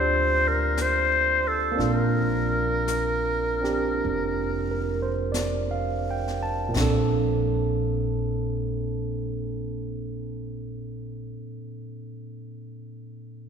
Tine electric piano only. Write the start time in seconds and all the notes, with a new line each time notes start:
Already playing: A#3 C4 D4 F4 G4 C5 D5
1.72 A#3 C4
1.77 D4 F4
3.61 C4 D4 G4
4.71 A#4
5.02 C5
5.32 D5
5.71 F5
6.11 G5
6.43 A5
6.69 A#2 A#3
6.74 C4 D4
6.81 A4